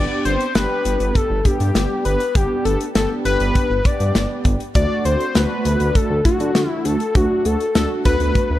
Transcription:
0.00 0.45 B3 medium
0.00 0.45 D4 medium
0.00 0.45 G4 medium
0.00 0.23 D5 loud
0.25 0.36 G1 medium
0.25 0.53 C5 loud
0.25 closed hi-hat medium
0.41 closed hi-hat soft
0.55 0.66 G1 loud
0.55 1.30 B3 medium
0.55 1.30 D4 medium
0.55 1.30 G4 medium
0.55 1.17 B4 loud
0.55 snare loud
0.55 closed hi-hat medium
0.85 0.96 G1 medium
0.85 closed hi-hat medium
1.00 1.11 G1 loud
1.00 closed hi-hat soft
1.15 1.47 A4 loud
1.15 kick medium
1.15 closed hi-hat medium
1.30 1.41 G1 loud
1.45 2.20 B3 medium
1.45 2.20 D4 medium
1.45 2.20 G4 medium
1.45 2.05 G4 loud
1.45 kick medium
1.45 closed hi-hat medium
1.60 1.71 G2 loud
1.60 closed hi-hat medium
1.75 1.86 G1 loud
1.75 snare loud
1.75 closed hi-hat medium
2.05 2.16 G1 loud
2.05 2.37 B4 loud
2.05 closed hi-hat medium
2.20 closed hi-hat soft
2.35 2.46 G1 loud
2.35 2.85 B3 medium
2.35 2.85 D4 medium
2.35 2.65 G4 medium
2.35 2.85 G4 medium
2.35 kick loud
2.35 closed hi-hat medium
2.65 2.76 G1 loud
2.65 2.79 A4 medium
2.65 closed hi-hat medium
2.81 closed hi-hat soft
2.95 3.06 G1 loud
2.95 3.70 B3 medium
2.95 3.70 D4 medium
2.95 3.70 G4 medium
2.95 3.09 A4 medium
2.95 snare loud
2.95 closed hi-hat medium
3.25 3.36 G1 loud
3.25 3.87 B4 loud
3.25 closed hi-hat medium
3.40 3.51 G1 loud
3.40 closed hi-hat soft
3.55 kick medium
3.55 closed hi-hat medium
3.70 3.81 G1 medium
3.85 4.60 B3 medium
3.85 4.60 D4 medium
3.85 4.60 G4 medium
3.85 4.45 D5 loud
3.85 kick medium
3.85 closed hi-hat medium
4.00 4.11 G2 medium
4.00 closed hi-hat medium
4.15 4.26 G1 loud
4.15 snare loud
4.15 closed hi-hat medium
4.45 4.56 G1 loud
4.45 kick medium
4.45 closed hi-hat medium
4.60 closed hi-hat soft
4.75 4.86 D2 loud
4.75 5.25 A3 medium
4.75 5.25 D4 medium
4.75 5.25 F#4 medium
4.75 5.03 D5 loud
4.75 kick loud
4.75 closed hi-hat medium
5.05 5.16 D2 medium
5.05 5.37 C5 loud
5.05 closed hi-hat medium
5.20 closed hi-hat soft
5.35 5.46 D2 loud
5.35 6.10 A3 medium
5.35 6.10 D4 medium
5.35 6.10 F#4 medium
5.35 5.97 B4 loud
5.35 snare loud
5.35 closed hi-hat medium
5.65 5.76 D2 loud
5.65 closed hi-hat medium
5.80 5.91 D2 medium
5.80 closed hi-hat medium
5.95 6.25 A4 loud
5.95 kick medium
5.95 closed hi-hat medium
6.10 6.21 D2 loud
6.25 7.00 A3 medium
6.25 7.00 D4 medium
6.25 6.68 F#4 loud
6.25 7.00 F#4 medium
6.25 kick medium
6.25 closed hi-hat medium
6.40 6.51 D3 loud
6.40 closed hi-hat medium
6.55 6.66 D2 loud
6.55 snare loud
6.55 closed hi-hat medium
6.68 6.87 E4 loud
6.85 6.96 D2 medium
6.85 7.17 A4 medium
6.85 closed hi-hat medium
7.00 closed hi-hat soft
7.15 7.26 D2 loud
7.15 7.65 A3 medium
7.15 7.65 D4 medium
7.15 7.65 F#4 medium
7.15 7.47 F#4 medium
7.15 kick loud
7.15 closed hi-hat medium
7.45 7.56 D2 loud
7.45 7.75 A4 medium
7.45 closed hi-hat medium
7.60 closed hi-hat soft
7.75 7.86 D2 loud
7.75 8.50 A3 medium
7.75 8.50 D4 medium
7.75 8.50 F#4 medium
7.75 7.89 A4 medium
7.75 snare loud
7.75 closed hi-hat medium
8.05 8.16 D2 loud
8.05 8.59 B4 loud
8.05 kick medium
8.05 closed hi-hat medium
8.20 8.31 D2 loud
8.20 closed hi-hat soft
8.35 kick medium
8.35 closed hi-hat medium
8.50 8.59 D2 loud

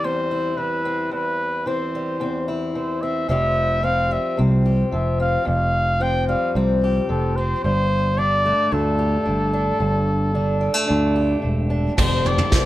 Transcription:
0.00 1.10 E2 soft
0.00 0.56 E3 medium
0.00 1.95 G3 soft
0.00 0.31 G4 medium
0.04 0.85 C4 medium
0.04 0.59 C5 medium
0.31 2.47 E4 soft
0.57 1.09 E3 medium
0.57 1.12 B4 medium
0.85 1.66 C4 soft
1.12 2.19 E2 medium
1.12 1.68 B4 medium
1.66 2.74 E3 soft
1.66 2.20 C4 medium
1.66 2.49 C5 medium
1.95 3.29 G3 soft
2.20 3.28 E2 medium
2.20 3.02 C4 soft
2.48 3.30 E4 soft
2.74 3.26 E3 soft
2.74 3.03 C5 medium
3.02 3.30 C4 soft
3.02 3.29 E5 medium
3.28 4.17 F1 medium
3.28 5.43 F2 medium
3.28 3.82 F3 medium
3.28 4.11 G3 soft
3.28 3.83 C4 soft
3.28 4.65 G4 medium
3.28 3.86 E5 medium
3.83 4.91 F3 soft
3.83 4.38 C4 soft
3.83 4.14 F5 medium
4.11 6.28 G3 soft
4.11 4.39 E5 medium
4.37 4.82 C2 medium
4.37 4.92 C3 medium
4.37 5.19 C4 medium
4.66 5.48 G4 soft
4.92 5.36 F1 medium
4.92 5.44 F3 medium
4.92 5.18 E5 medium
5.20 5.44 C4 soft
5.20 5.46 F5 medium
5.45 6.34 F1 medium
5.45 7.60 F2 medium
5.45 6.04 F5 medium
6.00 7.08 F3 soft
6.00 6.55 C4 soft
6.00 6.28 G5 medium
6.28 8.45 G3 medium
6.28 6.53 F5 medium
6.55 6.99 C2 medium
6.55 7.10 C3 soft
6.55 7.36 C4 medium
6.84 8.48 G4 soft
7.09 7.53 F1 medium
7.09 7.60 F3 soft
7.09 7.38 A4 medium
7.36 7.61 C4 soft
7.36 7.63 C5 medium
7.64 8.51 G1 medium
7.64 8.71 G2 medium
7.64 8.20 C5 medium
8.17 9.24 D3 medium
8.17 8.72 D4 soft
8.17 8.75 D5 medium
8.45 9.83 A3 soft
8.71 9.16 D2 medium
8.71 9.77 G2 medium
8.71 9.52 D4 soft
8.71 11.44 A4 medium
8.99 10.77 G4 soft
9.25 9.70 G1 medium
9.25 10.33 D3 medium
9.53 9.78 D4 soft
9.80 10.68 G1 medium
9.80 10.86 G2 medium
10.34 11.41 D3 medium
10.34 10.86 D4 soft
10.61 10.74 G3 soft
10.74 11.97 A3 soft
10.87 11.34 D2 medium
10.87 11.93 G2 medium
10.87 11.69 D4 soft
11.16 11.94 G4 medium
11.42 11.88 E1 medium
11.42 11.97 D3 soft
11.70 11.94 D4 soft
11.97 12.42 F1 medium
11.97 12.65 F2 medium
11.97 12.11 F3 medium
11.97 12.65 G3 soft
11.97 12.12 G3 medium
11.97 12.24 C4 medium
11.97 12.12 C4 medium
11.97 12.12 F4 medium
11.97 12.65 G4 medium
11.97 12.10 A4 medium
11.97 12.29 C5 medium
11.97 kick medium
11.97 floor tom medium
11.97 crash medium
12.11 12.40 C4 soft
12.11 12.39 F4 soft
12.11 12.38 A4 soft
12.25 12.65 C4 medium
12.25 12.65 D5 medium
12.25 floor tom medium
12.38 12.53 C4 soft
12.38 12.53 F4 soft
12.38 12.52 A4 soft
12.38 floor tom medium
12.51 12.65 F1 medium
12.51 12.65 F3 medium
12.51 12.65 G3 medium
12.51 12.65 C4 medium
12.51 12.65 F4 medium
12.51 kick medium
12.51 snare medium
12.55 12.65 A4 medium

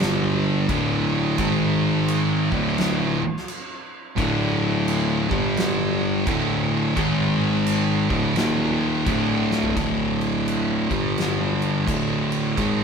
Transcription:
0.00 0.65 G1 loud
0.00 0.68 G2 loud
0.00 0.69 D3 loud
0.00 0.69 G3 loud
0.00 snare loud
0.00 crash medium
0.69 1.35 D1 medium
0.69 1.38 D2 medium
0.69 1.38 A2 medium
0.69 1.38 D3 loud
0.69 kick loud
0.69 crash medium
1.38 2.14 G#1 loud
1.38 2.50 G#2 medium
1.38 2.51 D#3 loud
1.38 2.51 G#3 loud
1.38 kick loud
1.38 crash medium
2.08 crash medium
2.52 3.17 D1 loud
2.52 3.20 D2 loud
2.52 3.20 A2 loud
2.52 3.21 D3 medium
2.52 kick medium
2.78 snare loud
2.78 crash medium
3.37 snare soft
3.48 crash medium
4.17 5.27 D1 loud
4.17 5.29 D2 loud
4.17 5.29 A2 medium
4.17 5.29 D3 loud
4.17 kick loud
4.17 crash medium
4.88 crash medium
5.30 6.23 G1 loud
5.30 6.26 G2 medium
5.30 6.26 D3 loud
5.30 6.26 G3 loud
5.30 kick loud
5.57 snare loud
5.57 crash medium
6.26 6.93 D1 medium
6.26 6.96 D2 medium
6.26 6.97 A2 medium
6.26 6.97 D3 medium
6.26 kick loud
6.26 crash medium
6.96 8.06 G#1 loud
6.96 8.09 G#2 loud
6.96 8.09 D#3 loud
6.96 8.09 G#3 loud
6.96 kick loud
6.96 crash medium
7.67 crash medium
8.10 8.35 D1 loud
8.10 8.35 D2 medium
8.10 8.36 A2 medium
8.10 8.36 D3 loud
8.10 kick loud
8.36 8.83 D#1 loud
8.36 9.05 D#2 medium
8.36 9.06 A#2 loud
8.36 9.06 D#3 loud
8.36 snare loud
8.36 crash medium
9.06 9.73 D1 medium
9.06 9.75 D2 medium
9.06 9.76 A2 medium
9.06 9.76 D3 loud
9.06 kick loud
9.06 crash medium
9.51 snare medium
9.63 floor tom medium
9.76 10.86 D1 loud
9.76 10.89 D2 medium
9.76 10.90 A2 medium
9.76 10.90 D3 loud
9.76 kick loud
9.76 crash medium
10.21 crash soft
10.48 crash medium
10.90 11.83 G1 loud
10.90 11.86 G2 medium
10.90 11.86 D3 medium
10.90 11.87 G3 loud
10.90 kick loud
10.90 crash soft
11.18 snare loud
11.18 crash medium
11.62 crash soft
11.87 12.54 D1 medium
11.87 12.56 D2 medium
11.87 12.57 A2 medium
11.87 12.57 D3 medium
11.87 kick loud
11.87 crash medium
12.32 crash medium
12.57 12.84 G#1 loud
12.57 12.84 G#2 medium
12.57 12.84 D#3 loud
12.57 12.84 G#3 loud
12.57 kick loud
12.57 crash medium

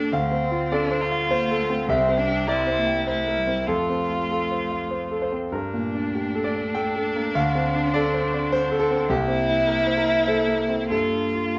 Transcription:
0.00 0.16 G2 soft
0.00 0.14 A#3 medium
0.00 0.14 D4 medium
0.00 0.16 D4 soft
0.00 0.16 G4 soft
0.00 0.16 A4 soft
0.00 0.16 A#4 medium
0.00 0.17 D5 medium
0.00 0.16 G5 medium
0.12 1.85 D2 medium
0.12 0.45 A3 medium
0.12 0.75 C4 medium
0.12 0.68 F5 medium
0.31 0.64 C4 soft
0.44 1.32 C4 medium
0.51 0.83 F4 medium
0.72 1.03 D4 medium
0.72 1.03 A4 medium
0.72 1.27 D5 medium
0.91 1.23 C5 medium
1.01 1.89 F4 medium
1.11 1.43 F5 medium
1.30 1.62 A#3 medium
1.30 1.58 C5 medium
1.51 1.82 A4 medium
1.61 1.91 A3 medium
1.70 1.90 C4 soft
1.89 3.63 C2 medium
1.89 2.48 G3 medium
1.89 2.19 C4 medium
1.89 2.44 E5 medium
2.09 2.40 C4 medium
2.17 2.49 D4 medium
2.28 2.60 G4 medium
2.47 2.79 C4 medium
2.47 3.05 E4 medium
2.47 2.79 A#4 medium
2.47 3.03 D5 medium
2.67 2.99 C5 soft
2.77 3.05 A#3 medium
2.87 3.19 G5 soft
3.06 3.38 A3 medium
3.06 3.68 E4 medium
3.06 3.39 C5 soft
3.27 3.60 A#4 soft
3.36 3.68 G3 medium
3.47 3.68 C4 soft
3.66 5.49 F2 soft
3.66 5.32 A3 medium
3.66 5.32 F4 medium
3.66 4.30 A4 medium
3.90 4.22 C4 soft
4.11 4.43 F4 soft
4.31 4.63 A4 soft
4.51 4.83 C5 soft
4.71 5.04 F5 soft
4.91 5.20 C5 soft
5.11 5.44 A4 soft
5.22 5.51 C5 medium
5.32 5.53 C4 soft
5.52 7.31 G2 medium
5.52 7.36 A3 medium
5.52 9.10 D4 medium
5.52 6.40 A#4 medium
5.74 6.06 A#2 soft
5.95 6.27 D4 soft
6.15 6.47 G4 soft
6.35 6.67 A4 soft
6.44 6.54 D5 medium
6.56 6.87 D5 soft
6.75 6.94 A4 medium
6.75 7.31 G5 medium
6.96 7.27 A4 soft
7.16 7.35 A#3 soft
7.34 9.06 D2 medium
7.34 9.11 C4 medium
7.34 7.91 F5 medium
7.55 7.87 C4 medium
7.76 8.07 D4 medium
7.94 8.26 A4 medium
7.94 8.32 D5 medium
8.14 8.45 C5 medium
8.34 8.64 D5 medium
8.52 8.79 C5 medium
8.72 8.78 A4 medium
8.79 9.07 A4 medium
8.91 9.10 C4 medium
9.09 10.88 C2 medium
9.09 11.59 A#3 medium
9.09 10.91 E4 medium
9.09 9.94 G4 medium
9.28 9.60 C4 medium
9.49 9.80 E4 medium
9.67 9.96 A#4 medium
9.87 10.20 C5 medium
9.97 10.26 A#4 medium
10.07 10.40 E5 medium
10.27 10.88 A4 medium
10.27 10.61 C5 soft
10.47 10.82 A#3 soft
10.69 10.91 C4 soft
10.90 11.59 G2 soft
10.90 11.59 F4 soft
10.90 11.52 A4 medium
11.12 11.47 D4 soft
11.34 11.59 F4 soft
11.55 11.59 A#4 soft

